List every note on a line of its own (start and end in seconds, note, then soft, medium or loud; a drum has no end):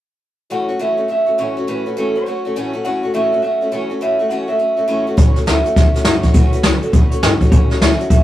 0.50 0.69 A2 medium
0.50 0.69 E3 medium
0.50 0.69 F#3 medium
0.50 0.69 A3 medium
0.50 0.68 C#4 medium
0.50 0.67 F#4 medium
0.50 0.79 F#5 loud
0.69 0.79 F#3 soft
0.69 0.79 A3 soft
0.69 0.79 C#4 medium
0.69 0.79 F#4 medium
0.79 0.98 A2 medium
0.79 0.98 E3 medium
0.79 0.98 F#3 medium
0.79 0.97 A3 medium
0.79 0.97 C#4 medium
0.79 0.96 F#4 medium
0.79 1.08 E5 medium
0.97 1.07 F#3 soft
0.97 1.08 A3 soft
0.97 1.08 C#4 soft
0.97 1.09 F#4 medium
1.08 1.27 F#3 medium
1.08 1.27 A3 medium
1.08 1.26 C#4 medium
1.08 1.25 F#4 medium
1.08 1.38 E5 loud
1.26 1.37 F#3 soft
1.26 1.38 A3 soft
1.26 1.38 C#4 soft
1.26 1.38 F#4 medium
1.38 1.57 A2 medium
1.38 1.57 E3 medium
1.38 1.57 F#3 medium
1.38 1.57 A3 medium
1.38 1.56 C#4 medium
1.38 1.56 F#4 medium
1.38 1.69 C#5 medium
1.57 1.67 F#3 soft
1.57 1.67 A3 soft
1.57 1.68 C#4 medium
1.57 1.68 F#4 medium
1.67 1.86 A2 medium
1.67 1.86 E3 medium
1.67 1.86 F#3 medium
1.67 1.86 A3 medium
1.67 1.85 C#4 medium
1.67 1.85 F#4 medium
1.67 1.98 B4 loud
1.86 1.96 F#3 soft
1.86 1.97 A3 medium
1.86 1.97 C#4 medium
1.86 1.97 F#4 soft
1.97 2.15 A2 medium
1.97 2.15 E3 medium
1.97 2.16 F#3 medium
1.97 2.16 A3 medium
1.97 2.15 C#4 medium
1.97 2.14 F#4 medium
1.97 2.17 A4 medium
2.15 2.25 F#3 soft
2.15 2.26 A3 soft
2.15 2.26 C#4 medium
2.15 2.26 F#4 medium
2.15 2.70 C#5 medium
2.26 2.44 F#3 medium
2.26 2.45 A3 medium
2.26 2.45 C#4 medium
2.26 2.44 F#4 medium
2.45 2.55 F#3 soft
2.45 2.56 A3 soft
2.45 2.56 C#4 soft
2.45 2.56 F#4 medium
2.56 2.74 A2 medium
2.56 2.74 E3 medium
2.56 2.74 F#3 medium
2.56 2.73 A3 loud
2.56 2.72 C#4 medium
2.56 2.72 F#4 medium
2.73 2.84 F#3 medium
2.73 2.84 A3 medium
2.73 2.84 C#4 medium
2.73 2.84 F#4 medium
2.84 3.03 A2 medium
2.84 3.03 E3 medium
2.84 3.03 F#3 medium
2.84 3.03 A3 medium
2.84 3.02 C#4 medium
2.84 3.02 F#4 medium
2.84 3.12 F#5 loud
3.03 3.13 F#3 soft
3.03 3.13 A3 soft
3.03 3.14 C#4 soft
3.03 3.14 F#4 medium
3.14 3.32 A2 medium
3.14 3.32 E3 medium
3.14 3.32 F#3 medium
3.14 3.32 A3 medium
3.14 3.32 C#4 medium
3.14 3.31 F#4 medium
3.14 3.42 E5 medium
3.32 3.41 F#3 soft
3.32 3.42 A3 medium
3.32 3.43 C#4 medium
3.32 3.43 F#4 medium
3.42 3.61 F#3 medium
3.42 3.61 A3 medium
3.42 3.61 C#4 medium
3.42 3.60 F#4 medium
3.42 3.73 E5 medium
3.61 3.71 F#3 soft
3.61 3.71 A3 medium
3.61 3.72 C#4 soft
3.61 3.72 F#4 medium
3.72 3.90 A2 medium
3.72 3.90 E3 medium
3.72 3.90 F#3 medium
3.72 3.90 A3 medium
3.72 3.90 C#4 medium
3.72 3.88 F#4 medium
3.72 4.03 C#5 medium
3.90 4.01 F#3 soft
3.90 4.01 A3 soft
3.90 4.01 C#4 medium
3.90 4.01 F#4 medium
4.01 4.19 A2 medium
4.01 4.20 E3 medium
4.01 4.20 F#3 medium
4.01 4.20 A3 medium
4.01 4.19 C#4 medium
4.01 4.18 F#4 medium
4.01 4.29 E5 loud
4.19 4.30 F#3 soft
4.19 4.30 A3 soft
4.19 4.30 C#4 medium
4.19 4.30 F#4 medium
4.29 4.49 A2 medium
4.29 4.49 E3 medium
4.29 4.49 F#3 medium
4.29 4.48 A3 medium
4.29 4.47 C#4 medium
4.29 4.46 F#4 medium
4.29 4.48 F#5 medium
4.48 4.57 F#3 soft
4.48 4.58 A3 soft
4.48 4.58 C#4 medium
4.48 4.59 F#4 medium
4.48 5.03 E5 medium
4.59 4.77 F#3 medium
4.59 4.77 A3 medium
4.59 4.76 C#4 medium
4.59 4.75 F#4 medium
4.77 4.87 F#3 soft
4.77 4.87 A3 soft
4.77 4.87 C#4 medium
4.77 4.88 F#4 soft
4.88 5.07 A2 medium
4.88 5.07 E3 medium
4.88 5.07 F#3 medium
4.88 5.07 A3 medium
4.88 5.06 C#4 medium
4.88 5.06 F#4 medium
5.07 5.16 F#3 soft
5.07 5.17 A3 medium
5.07 5.17 C#4 medium
5.07 5.17 F#4 medium
5.17 5.34 A1 loud
5.17 5.36 A2 medium
5.17 5.36 E3 medium
5.17 5.36 F#3 medium
5.17 5.36 A3 medium
5.17 5.36 C#4 medium
5.17 5.35 F#4 medium
5.17 5.45 C#5 loud
5.17 kick loud
5.17 closed hi-hat medium
5.36 5.46 F#3 soft
5.36 5.46 A3 soft
5.36 5.46 C#4 medium
5.36 5.47 F#4 medium
5.36 snare soft
5.36 closed hi-hat medium
5.46 5.63 D2 medium
5.46 5.65 A2 medium
5.46 5.65 E3 medium
5.46 5.65 F#3 medium
5.46 5.64 A3 medium
5.46 5.64 C#4 medium
5.46 5.63 F#4 medium
5.46 5.76 E5 medium
5.46 snare medium
5.46 closed hi-hat medium
5.64 5.75 F#3 soft
5.64 5.76 A3 soft
5.64 5.76 C#4 soft
5.64 5.76 F#4 medium
5.64 closed hi-hat medium
5.76 5.92 E2 medium
5.76 5.95 F#3 medium
5.76 5.95 A3 medium
5.76 5.94 C#4 medium
5.76 5.93 F#4 medium
5.76 6.22 E5 loud
5.76 kick loud
5.76 snare soft
5.76 closed hi-hat medium
5.94 6.05 F#3 soft
5.94 6.05 A3 soft
5.94 6.05 C#4 soft
5.94 6.05 F#4 medium
5.94 snare soft
5.94 closed hi-hat medium
6.05 6.21 F#2 medium
6.05 6.24 A2 medium
6.05 6.24 E3 medium
6.05 6.24 F#3 medium
6.05 6.24 A3 medium
6.05 6.23 C#4 medium
6.05 6.23 F#4 medium
6.05 snare loud
6.05 closed hi-hat medium
6.22 6.34 F#3 soft
6.22 6.35 A3 soft
6.22 6.35 C#4 soft
6.22 6.35 F#4 soft
6.22 6.50 C#5 medium
6.22 kick medium
6.22 snare soft
6.22 closed hi-hat medium
6.34 6.53 A2 medium
6.34 6.53 E3 medium
6.34 6.54 F#3 medium
6.34 6.53 A3 medium
6.34 6.53 C#4 medium
6.34 6.52 F#4 medium
6.34 kick loud
6.34 closed hi-hat loud
6.51 6.63 C#2 medium
6.51 6.64 A3 soft
6.51 6.64 C#4 medium
6.51 6.64 F#4 medium
6.51 6.81 B4 medium
6.51 closed hi-hat medium
6.55 6.63 F#3 soft
6.63 6.80 C#2 medium
6.63 6.83 E3 medium
6.63 6.83 F#3 medium
6.63 6.82 A3 medium
6.63 6.81 C#4 medium
6.63 6.80 F#4 medium
6.63 snare loud
6.63 closed hi-hat medium
6.81 6.91 F#3 soft
6.81 6.92 A3 medium
6.81 6.92 C#4 medium
6.81 6.93 F#4 medium
6.81 6.93 A4 medium
6.81 closed hi-hat medium
6.92 7.09 E2 medium
6.92 7.11 F#3 medium
6.92 7.12 A3 medium
6.92 7.11 C#4 medium
6.92 7.10 F#4 medium
6.92 7.12 B4 medium
6.92 kick loud
6.92 closed hi-hat medium
7.11 7.22 F#3 soft
7.11 7.22 A3 medium
7.11 7.22 C#4 medium
7.11 7.22 F#4 medium
7.11 7.38 C#5 medium
7.11 muted upright bass stroke medium
7.11 closed hi-hat medium
7.22 7.38 G2 medium
7.22 7.41 A2 medium
7.22 7.41 E3 medium
7.22 7.41 F#3 medium
7.22 7.41 A3 medium
7.22 7.41 C#4 medium
7.22 7.40 F#4 medium
7.22 snare loud
7.22 closed hi-hat medium
7.41 7.51 F#3 soft
7.41 7.51 A3 soft
7.41 7.52 C#4 medium
7.41 7.52 F#4 soft
7.41 kick medium
7.41 closed hi-hat medium
7.50 7.68 A1 medium
7.50 7.70 A2 medium
7.50 7.70 E3 medium
7.50 7.70 F#3 medium
7.50 7.71 A3 medium
7.50 7.70 C#4 medium
7.50 7.69 F#4 medium
7.50 7.80 C#5 loud
7.50 kick loud
7.50 closed hi-hat medium
7.70 7.81 F#3 medium
7.70 7.81 A3 soft
7.70 7.81 C#4 medium
7.70 7.81 F#4 medium
7.70 snare soft
7.70 closed hi-hat medium
7.80 7.97 D2 medium
7.80 8.00 A2 medium
7.80 8.00 E3 medium
7.80 8.00 F#3 medium
7.80 7.99 A3 medium
7.80 7.99 C#4 loud
7.80 7.98 F#4 medium
7.80 8.09 E5 medium
7.80 snare loud
7.80 closed hi-hat medium
7.99 8.09 F#3 medium
7.99 8.10 A3 medium
7.99 8.11 C#4 medium
7.99 8.10 F#4 medium
7.99 closed hi-hat medium
8.10 8.23 E2 medium
8.10 8.23 F#3 medium
8.10 8.23 A3 medium
8.10 8.23 C#4 medium
8.10 8.23 F#4 medium
8.10 8.23 E5 medium
8.10 kick loud
8.10 closed hi-hat medium